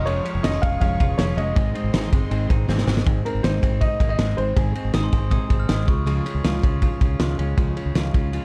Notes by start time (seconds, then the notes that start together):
Already playing: F1 G#4 C#5 F5 C#6
0.06 F3 G#3 C#4 G#4 C#5, ride
0.24 G#3 C#4 G#4, ride
0.35 F1
0.43 F1 F3 G#3 C#4 D#4 G#4 D#5, snare, ride
0.54 F4
0.62 F1 G#3 F5, kick, ride
0.80 F1 F3 G#3 C#4 G#4 F5, kick, ride
0.98 F1 G#3 C#4 F4 G#4, kick, ride
1.18 F1 F3 G#3 C#4 G#4 C#5, snare, ride
1.37 F1 G#3 C#4 G#4 D#5, ride
1.55 G#1 G#2 D#3 G#3 C4 D#4 G#4 C5 D#5 C6, kick, ride
1.74 G#3 C4 D#4 G#4, ride
1.84 G#1
1.93 G#1 G#2 D#3 G#3 C4 D#4 G#4, snare, ride
2.12 G1 G#3 C4 D#4 G#4, kick, ride
2.30 G#1 G#3 C4 D#4 G#4, ride
2.49 G#1 G#3 C4 D#4 G#4, kick, ride
2.67 G#1 G#2 D#3 G#3 C4 D#4 G#4, snare
2.78 snare
2.87 G#1 G#3 C4 D#4 G#4, snare
2.97 snare
3.05 G#1 G#2 D#3 G#3 C4 D#4 G#4, kick, ride
3.23 G#3 C4 D#4 G#4 A#4, ride
3.35 G#1
3.43 G#1 G#2 D#3 G#3 C4 D#4 G#4 C5, snare, ride
3.61 G#1 G#3 C4 D#4 G#4, kick, ride
3.81 G#3 C4 D#4 G#4 D#5, kick, ride
3.99 G#1 G#3 A#3 C4 D#4 G#4, kick, ride
4.09 C4 D#5
4.18 G#1 G#2 D#3 G#3 C4 D#4 G#4, snare, ride
4.37 G#1 G#3 C4 D#4 G#4 C5, ride
4.56 G#1 G#2 D#3 G#3 C4 D#4 G#4, kick, ride
4.74 G#3 C4 D#4 G#4, ride
4.85 G#1
4.93 G#1 G#2 D#3 G#3 C4 D#4 G#4 D#6, snare, ride
5.04 C6
5.12 G#1 G#3 C4 D#4 G#4 C6, kick, ride
5.30 G#3 C4 D#4 G#4 D#6, kick, ride
5.49 G#1 G#3 C4 D#4 G#4, kick, ride
5.60 F6
5.68 G#1 G#2 D#3 G#3 C4 D#4 G#4 D#6, snare, ride
5.87 C#2 C#3 G#3 F4 G#4 C#6, kick, ride
6.06 C#3 F3 G#3 F4 G#4, ride
6.25 G#3 C#4 F4 G#4, ride
6.35 C#2
6.44 C#2 C#3 F3 G#3 F4 G#4, snare, ride
6.63 C#2 G#3 C#4 F4 G#4, kick, ride
6.82 F3 G#3 F4 G#4, kick, ride
7.00 C#2 G#3 C#4 F4 G#4, kick, ride
7.19 C#2 C#3 F3 G#3 F4 G#4, snare, ride
7.38 C#2 G#3 C#4 F4 G#4, ride
7.57 C#2 C#3 F3 G#3 F4 G#4, kick, ride
7.76 G#3 C#4 F4 G#4, ride
7.86 C#2
7.95 C#2 C#3 F3 G#3 F4 G#4, snare, ride
8.13 C#2 G#3 C#4 F4 G#4, kick, ride
8.32 F3 G#3 F4 G#4, ride